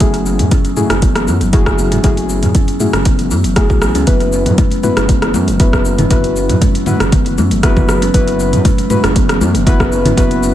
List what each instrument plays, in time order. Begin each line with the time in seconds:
0.00 detuned saw bass F#1, kalimba F#3, synth stab A3 E4 F#4 G#4, kick, closed hi-hat, shaker
0.14 closed hi-hat, shaker
0.26 shaker
0.39 detuned saw bass F#2, closed hi-hat, mid tom, shaker
0.51 kalimba C#4, kick, closed hi-hat, shaker
0.65 closed hi-hat, shaker
0.77 synth stab A3 E4 F#4 G#4, kalimba A3, mid tom, shaker
0.90 detuned saw bass F#1, kalimba C#4, cross-stick, closed hi-hat, shaker
1.02 kalimba B3, kick, closed hi-hat, shaker
1.16 kalimba E3, cross-stick, closed hi-hat, shaker
1.28 detuned saw bass F#2, kalimba F#3, shaker
1.41 detuned saw bass F#1, closed hi-hat, shaker
1.53 synth stab A3 E4 F#4 G#4, kick, closed hi-hat, shaker
1.66 kick, cross-stick, shaker
1.78 detuned saw bass F#1, shaker
1.92 kalimba C#4, closed hi-hat, mid tom, shaker
2.04 detuned saw bass F#1, kalimba F#3, synth stab A3 E4 F#4 G#4, kick, closed hi-hat, shaker
2.17 closed hi-hat, shaker
2.29 shaker
2.43 detuned saw bass F#2, closed hi-hat, mid tom, shaker
2.55 kalimba C#4, kick, closed hi-hat, shaker
2.68 closed hi-hat, shaker
2.80 synth stab A3 E4 F#4 G#4, kalimba A3, mid tom, shaker
2.93 detuned saw bass F#1, kalimba C#4, cross-stick, closed hi-hat, shaker
3.05 kalimba B3, kick, closed hi-hat, shaker
3.19 kalimba E3, closed hi-hat, shaker
3.31 detuned saw bass F#2, kalimba F#3, shaker
3.44 detuned saw bass F#1, closed hi-hat, shaker
3.56 synth stab A3 E4 F#4 G#4, kick, cross-stick, closed hi-hat, shaker
3.70 detuned saw bass B1, kick, shaker
3.82 detuned saw bass A1, cross-stick, shaker
3.95 detuned saw bass C#2, kalimba C#4, closed hi-hat, shaker
4.07 detuned saw bass F#1, kalimba F#3, synth stab B3 E4 F#4 B4, kick, closed hi-hat, shaker
4.20 closed hi-hat, shaker
4.33 shaker
4.46 detuned saw bass F#2, closed hi-hat, mid tom, shaker
4.58 kalimba C#4, kick, closed hi-hat, high conga, shaker
4.71 closed hi-hat, high conga, shaker
4.83 kalimba A3, synth stab B3 E4 F#4 B4, mid tom, high conga, shaker
4.97 detuned saw bass F#1, kalimba C#4, cross-stick, closed hi-hat, shaker
5.09 kalimba B3, kick, closed hi-hat, high conga, shaker
5.22 kalimba E3, cross-stick, closed hi-hat, shaker
5.34 detuned saw bass F#2, kalimba F#3, high conga, shaker
5.48 detuned saw bass F#1, closed hi-hat, shaker
5.60 synth stab B3 E4 F#4 B4, kick, closed hi-hat, shaker
5.73 kick, cross-stick, shaker
5.85 detuned saw bass F#1, shaker
5.98 kalimba C#4, closed hi-hat, mid tom, low conga, shaker
6.11 detuned saw bass F#1, kalimba F#3, synth stab B3 E4 F#4 B4, kick, closed hi-hat, shaker
6.24 closed hi-hat, shaker
6.36 shaker
6.49 detuned saw bass F#2, closed hi-hat, mid tom, shaker
6.62 kalimba C#4, kick, closed hi-hat, high conga, shaker
6.75 closed hi-hat, shaker
6.86 kalimba A3, synth stab B3 E4 F#4 B4, mid tom, high conga, low conga, shaker
7.00 detuned saw bass F#1, kalimba C#4, cross-stick, closed hi-hat, shaker
7.12 kalimba B3, kick, closed hi-hat, high conga, low conga, shaker
7.26 kalimba E3, closed hi-hat, shaker
7.38 detuned saw bass F#2, kalimba F#3, high conga, shaker
7.51 detuned saw bass F#1, closed hi-hat, shaker
7.63 synth stab B3 E4 F#4 B4, kick, cross-stick, closed hi-hat, shaker
7.77 kick, high conga, low conga, shaker
7.89 detuned saw bass F#1, cross-stick, shaker
8.02 kalimba C#4, closed hi-hat, shaker
8.14 detuned saw bass F#1, kalimba F#3, synth stab B3 E4 F#4 B4, kick, closed hi-hat, shaker
8.28 closed hi-hat, shaker
8.40 shaker
8.53 detuned saw bass F#2, closed hi-hat, mid tom, shaker
8.65 kalimba C#4, kick, closed hi-hat, high conga, shaker
8.78 closed hi-hat, high conga, shaker
8.90 kalimba A3, synth stab B3 E4 F#4 B4, mid tom, high conga, shaker
9.04 detuned saw bass F#1, kalimba C#4, cross-stick, closed hi-hat, shaker
9.16 kalimba B3, kick, closed hi-hat, high conga, shaker
9.29 kalimba E3, cross-stick, closed hi-hat, shaker
9.41 detuned saw bass F#2, kalimba F#3, high conga, shaker
9.55 detuned saw bass F#1, closed hi-hat, shaker
9.66 synth stab B3 E4 F#4 B4, kick, closed hi-hat, shaker
9.80 kick, cross-stick, shaker
9.92 detuned saw bass F#1, shaker
10.05 kalimba C#4, closed hi-hat, mid tom, low conga, shaker
10.17 detuned saw bass F#1, kalimba F#3, synth stab B3 E4 F#4 B4, kick, closed hi-hat, shaker
10.31 closed hi-hat, shaker
10.43 shaker